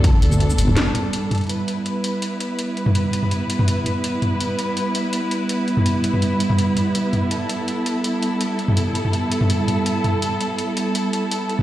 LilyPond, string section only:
\new Staff \with { instrumentName = "String section" } { \time 4/4 \key e \minor \tempo 4 = 165 << { a'1 | b'1~ | b'1~ | b'1~ |
b'1 | a'1~ | a'1~ | a'1 | } \\ { <g b d'>1 | <g b e'>1~ | <g b e'>1~ | <g b e'>1~ |
<g b e'>1~ | <g b e'>1~ | <g b e'>1~ | <g b e'>1 | } >> }